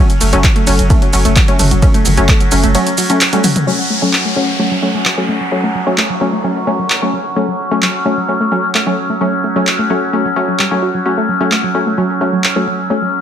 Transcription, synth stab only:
0.00 0.11 F#3 medium
0.00 0.11 A3 medium
0.00 0.11 C#4 loud
0.33 0.45 F#3 medium
0.33 0.45 A3 medium
0.33 0.45 C#4 loud
0.67 0.87 F#3 medium
0.67 0.87 A3 medium
0.67 0.87 C#4 loud
0.90 1.10 F#3 medium
0.90 1.10 A3 medium
0.90 1.10 C#4 medium
1.13 1.34 F#3 medium
1.13 1.34 A3 medium
1.13 1.34 C#4 medium
1.48 1.69 F#3 medium
1.48 1.69 A3 medium
1.48 1.69 C#4 loud
1.82 1.96 F#3 medium
1.82 1.96 A3 medium
1.82 1.96 C#4 loud
2.17 2.30 F#3 medium
2.17 2.30 A3 medium
2.17 2.30 C#4 loud
2.52 2.71 F#3 medium
2.52 2.71 A3 medium
2.52 2.71 C#4 loud
2.75 2.95 F#3 medium
2.75 2.95 A3 medium
2.75 2.95 C#4 medium
3.10 3.22 F#3 medium
3.10 3.22 A3 medium
3.10 3.22 C#4 medium
3.33 3.45 F#3 medium
3.33 3.45 A3 medium
3.33 3.45 C#4 medium
3.67 3.80 F#3 medium
3.67 3.80 A3 medium
3.67 3.80 C#4 medium
4.02 4.15 F#3 medium
4.02 4.15 A3 medium
4.02 4.15 C#4 loud
4.36 4.56 F#3 medium
4.36 4.56 A3 medium
4.36 4.56 C#4 loud
4.59 4.79 F#3 medium
4.59 4.79 A3 medium
4.59 4.79 C#4 medium
4.83 5.03 F#3 medium
4.83 5.03 A3 medium
4.83 5.03 C#4 medium
5.18 5.38 F#3 medium
5.18 5.38 A3 medium
5.18 5.38 C#4 medium
5.52 5.65 F#3 medium
5.52 5.65 A3 medium
5.52 5.65 C#4 medium
5.87 5.99 F#3 medium
5.87 5.99 A3 medium
5.87 5.99 C#4 loud
6.21 6.41 F#3 medium
6.21 6.41 A3 medium
6.21 6.41 C#4 loud
6.44 6.64 F#3 medium
6.44 6.64 A3 medium
6.44 6.64 C#4 medium
6.67 6.88 F#3 medium
6.67 6.88 A3 medium
6.67 6.88 C#4 medium
7.02 7.23 F#3 medium
7.02 7.23 A3 medium
7.02 7.23 C#4 medium
7.36 7.50 F#3 medium
7.36 7.50 A3 medium
7.36 7.50 C#4 medium
7.71 7.84 F#3 medium
7.71 7.84 A3 medium
7.71 7.84 C#4 loud
8.05 8.25 F#3 medium
8.05 8.25 A3 medium
8.05 8.25 C#4 loud
8.29 8.48 F#3 medium
8.29 8.48 A3 medium
8.29 8.48 C#4 medium
8.52 8.72 F#3 medium
8.52 8.72 A3 medium
8.52 8.72 C#4 medium
8.87 9.07 F#3 medium
8.87 9.07 A3 medium
8.87 9.07 C#4 medium
9.21 9.34 F#3 medium
9.21 9.34 A3 medium
9.21 9.34 C#4 medium
9.56 9.68 F#3 medium
9.56 9.68 A3 medium
9.56 9.69 C#4 loud
9.90 10.10 F#3 medium
9.90 10.10 A3 medium
9.90 10.10 C#4 loud
10.13 10.33 F#3 medium
10.13 10.33 A3 medium
10.13 10.33 C#4 medium
10.36 10.57 F#3 medium
10.36 10.57 A3 medium
10.36 10.57 C#4 medium
10.71 10.92 F#3 medium
10.71 10.92 A3 medium
10.71 10.92 C#4 medium
11.06 11.19 F#3 medium
11.06 11.19 A3 medium
11.06 11.19 C#4 medium
11.40 11.53 F#3 medium
11.40 11.53 A3 medium
11.40 11.53 C#4 loud
11.75 11.94 F#3 medium
11.75 11.94 A3 medium
11.75 11.94 C#4 loud
11.98 12.18 F#3 medium
11.98 12.18 A3 medium
11.98 12.18 C#4 medium
12.21 12.42 F#3 medium
12.21 12.42 A3 medium
12.21 12.42 C#4 medium
12.56 12.77 F#3 medium
12.56 12.77 A3 medium
12.56 12.77 C#4 medium
12.90 13.03 F#3 medium
12.90 13.03 A3 medium
12.90 13.03 C#4 medium

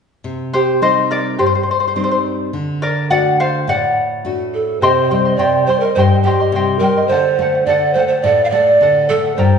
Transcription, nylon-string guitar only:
0.24 1.35 C3 soft
0.82 1.37 G3 soft
0.82 1.37 C4 soft
0.82 1.37 D#4 soft
1.39 2.50 G2 soft
1.96 2.51 G3 soft
1.96 2.51 C4 soft
1.96 2.52 D#4 soft
2.53 3.64 D3 soft
3.10 3.66 A3 soft
3.10 3.66 D4 soft
3.10 3.66 F#4 soft
3.67 4.78 A2 soft
4.25 4.80 A3 soft
4.25 4.80 D4 soft
4.25 4.80 F#4 soft
4.82 5.38 C3 soft
5.11 5.39 G3 soft
5.39 5.67 C3 soft
5.68 5.95 G3 soft
5.96 7.07 G2 medium
6.24 6.52 G3 medium
6.52 6.80 C3 medium
6.80 7.08 G3 soft
7.10 7.65 D3 medium
7.39 7.66 A3 medium
7.67 7.94 D3 soft
7.95 8.23 A3 soft
8.24 9.34 A2 medium
8.52 8.80 A3 medium
8.81 9.08 D3 soft
9.10 9.37 A3 soft
9.38 9.59 G2 medium

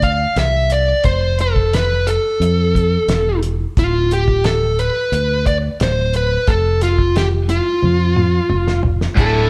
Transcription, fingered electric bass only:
0.00 0.25 D2 medium
0.36 0.93 C2 medium
1.05 2.17 F1 medium
2.40 2.97 F2 medium
3.08 3.65 E1 medium
3.77 4.89 D1 medium
5.12 5.68 D2 medium
5.80 6.36 D1 medium
6.48 7.60 F1 medium
7.83 8.39 F2 medium
8.51 9.07 F1 medium
9.17 9.50 D1 medium

